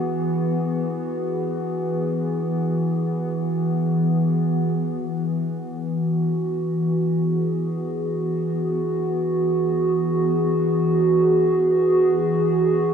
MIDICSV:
0, 0, Header, 1, 2, 480
1, 0, Start_track
1, 0, Key_signature, 4, "major"
1, 0, Tempo, 500000
1, 12421, End_track
2, 0, Start_track
2, 0, Title_t, "Ambient pad"
2, 0, Program_c, 0, 92
2, 0, Note_on_c, 0, 52, 69
2, 0, Note_on_c, 0, 59, 70
2, 0, Note_on_c, 0, 66, 77
2, 0, Note_on_c, 0, 68, 78
2, 4564, Note_off_c, 0, 52, 0
2, 4570, Note_off_c, 0, 66, 0
2, 4572, Note_off_c, 0, 59, 0
2, 4576, Note_on_c, 0, 52, 77
2, 4588, Note_off_c, 0, 68, 0
2, 5532, Note_on_c, 0, 59, 66
2, 5564, Note_on_c, 0, 66, 66
2, 6859, Note_on_c, 0, 68, 76
2, 12421, Note_off_c, 0, 52, 0
2, 12421, Note_off_c, 0, 59, 0
2, 12421, Note_off_c, 0, 66, 0
2, 12421, Note_off_c, 0, 68, 0
2, 12421, End_track
0, 0, End_of_file